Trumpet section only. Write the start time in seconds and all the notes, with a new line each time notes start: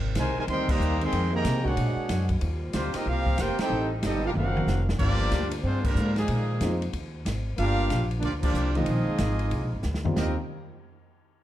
0.18 D#4 A#4 C5 G#5
0.39 D#4 A#4 C5 G#5
0.50 A#4 D#5 G5 C6
0.71 G4 C5 D#5 A#5
1.04 G#4 D#5 G5 C6
1.35 G#4 D#5 G5 A#5
1.67 D4 G#4 C#5 F#5
2.74 A#3 F4 G4 C5
2.95 C4 G4 A#4 D#5
3.07 C4 G4 A#4 F5
3.40 F4 A#4 C5 G5
3.60 D#4 A4 C5 G5
4.05 C4 G4 A4 D#5
4.26 D4 G4 A#4 F5
4.36 C4 A#4 F5 F#5
4.99 A#3 F4 G4 D5
5.65 G#3 D4 F4 C5
5.85 G3 D4 F4 A#4
6.18 A#3 D#4 G#4
7.58 D4 G4 A#4 F5
8.23 A#3 F4 G4 D5
8.42 A#3 F4 G4 D5
8.76 A#3 F4 G#4 D#5
10.16 C4 G4 A#4 D#5